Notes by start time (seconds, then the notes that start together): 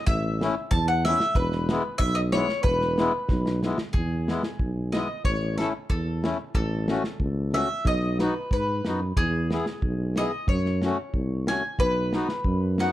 0.07 A1 E5, kick
0.41 A3 C#4 E4, snare, hi-hat pedal
0.71 E2 A5, kick
0.88 F#5
1.05 A3 C#4 E4 E5, snare, hi-hat pedal
1.20 snare
1.35 E1 B4, kick
1.52 snare
1.69 G#3 B3 E4, snare, hi-hat pedal
1.98 B1 E5, kick
2.15 D#5
2.32 G#3 B3 E4 C#5, snare, hi-hat pedal
2.49 snare
2.63 E1 B4, kick
2.81 snare
2.97 G#3 B3 E4, snare, hi-hat pedal
3.28 B1, kick, snare
3.46 snare
3.63 G#3 B3 E4, snare, hi-hat pedal
3.78 snare
3.93 E2 G#4, kick
4.28 G#3 B3 E4, snare
4.43 snare
4.59 B1, kick
4.92 G#3 B3 E4 D#5, snare
5.24 A1 C#5, kick
5.58 A3 C#4 E4 A4, snare
5.89 E2 A4, kick
6.23 A3 C#4 E4, snare
6.54 A1 A4, kick
6.88 A3 C#4 F#4, snare
7.04 snare
7.20 C#2, kick
7.53 A3 C#4 F#4 E5, snare
7.85 B1 D#5, kick
8.19 B3 D#4 F#4 B4, snare
8.51 G#2 B4, kick
8.85 F#2 B3 D#4 F#4, snare
9.16 E2 G#4, kick
9.51 B3 E4 G#4, snare
9.66 snare
9.82 B1, kick
10.16 B3 E4 G#4 D#5, snare
10.47 F#2 C#5, kick
10.65 snare
10.82 A3 C#4 F#4, snare
11.13 C2, kick
11.47 A3 C#4 F#4 G#5, snare
11.79 B1 B4, kick
12.13 B3 D#4 F#4, snare
12.29 snare
12.44 F#2, kick
12.78 B3 D#4 F#4 F#5, snare